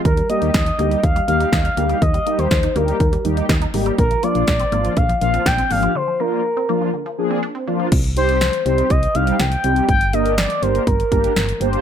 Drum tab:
CC |----------------|----------------|----------------|----------------|
HH |xxxxxxxxxxxxxxxx|xxxxxxxxxxxxxxox|xxxxxxxxxxxxxxox|----------------|
SD |----o-------o---|----o-------o---|----o-------o---|----------------|
BD |o---o---o---o---|o---o---o---o---|o---o---o---o---|----------------|

CC |x---------------|----------------|
HH |xxxxxxxxxxxxxxxx|xxxxxxxxxxxxxxxx|
SD |----o-------o---|----o-------o---|
BD |o-------o-------|o-------o-o-----|